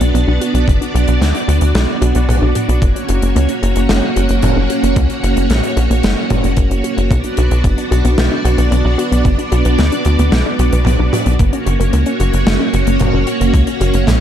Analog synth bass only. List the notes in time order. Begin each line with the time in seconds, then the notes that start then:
0.01 B1
0.14 B1
0.28 B1
0.54 B1
0.68 F#1
0.95 B1
1.08 B1
1.21 D2
1.48 D2
1.62 D2
1.75 B1
2.02 B1
2.15 B1
2.29 B1
2.42 B1
2.69 B1
2.82 F#1
3.09 F#1
3.22 F#1
3.36 C#2
3.63 F#1
3.76 F#1
3.90 F#1
4.16 F#1
4.30 F#1
4.43 F#1
4.56 F#1
4.83 F#1
4.96 C#2
5.23 F#1
5.37 F#1
5.50 A#1
5.77 A#1
5.90 A#1
6.04 F#1
6.31 F#1
6.44 F#1
6.57 F#1
6.71 F#1
6.98 F#1
7.11 B1
7.38 B1
7.51 B1
7.64 F#1
7.91 B1
8.05 B1
8.18 B1
8.45 B1
8.58 B1
8.71 B1
8.85 B1
9.12 B1
9.25 F#1
9.52 B1
9.65 B1
9.79 D2
10.06 D2
10.19 D2
10.32 B1
10.59 B1
10.73 B1
10.86 B1
10.99 B1
11.26 B1
11.39 F#1
11.66 F#1
11.80 F#1
11.93 C#2
12.20 F#1
12.34 F#1
12.47 F#1
12.74 F#1
12.87 F#1
13.00 F#1
13.14 F#1
13.41 F#1
13.54 C#2
13.81 F#1
13.94 F#1
14.07 A#1